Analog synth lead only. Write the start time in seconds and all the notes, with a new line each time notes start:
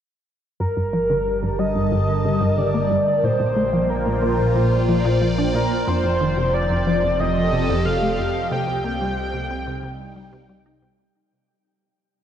0.60 A#4
1.59 D#5
2.58 D5
3.25 C5
3.90 A#4
5.55 A#4
5.87 C5
6.54 D5
7.20 D#5
7.85 F5
8.52 G5